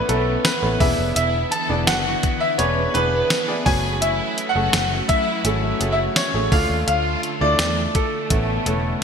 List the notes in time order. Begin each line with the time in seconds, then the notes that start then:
Already playing: A3 B3 C#4 E4 A4 B4
0.07 B1 A3 B3 C#4 E4 A4 B4, closed hi-hat
0.43 B3 B4, snare, closed hi-hat, tambourine
0.62 A1 B3 C#4 E4 A4 B4
0.79 E1 D3 E3 B3 D4 E4 G#4 B4 E5, kick, open hi-hat
0.98 F1
1.15 E1 E4 E5, closed hi-hat
1.50 A4 A5, closed hi-hat
1.69 E1 B3 D4 E4 G#4 D5
1.86 F#1 F#4 F#5, snare, closed hi-hat, tambourine
2.23 kick, closed hi-hat
2.39 E4 E5
2.58 E1 B3 C#4 D4 E4 G#4 B4 C#5, closed hi-hat
2.93 E1 B3 D4 E4 G#4 B4, closed hi-hat
3.30 snare, closed hi-hat, tambourine
3.47 B3 D4 E4 G#4 D5
3.65 F#1 F#3 A3 C#4 F#4 G#4 C#5 G#5, kick, open hi-hat
4.01 E4 E5, closed hi-hat
4.38 closed hi-hat
4.48 F#4 F#5
4.55 F#1 A3 C#4 F#4 G#4 A4
4.73 F#1, snare, closed hi-hat, tambourine
5.08 E4 E5, kick, closed hi-hat
5.44 G#1 A3 C#4 F#4 G#4 A4, closed hi-hat
5.80 F#1 A3 C#4 F#4 G#4 A4, closed hi-hat
5.91 E4 E5
6.15 C#4 C#5, snare, closed hi-hat, tambourine
6.34 A1 A3 C#4 F#4 G#4 A4
6.51 D2 D3 A3 D4 F4 A4 F5, kick, open hi-hat
6.70 D#2
6.87 D2 F4 F5, closed hi-hat
7.23 closed hi-hat
7.40 D2 A3 D4 E4 F4 A4 D5
7.59 E2, snare, closed hi-hat, tambourine
7.94 A3 A4, kick, closed hi-hat
8.30 A1 C#3 A3 B3 C#4 E4 A4, kick, closed hi-hat
8.66 E1 A3 B3 C#4 E4 A4, closed hi-hat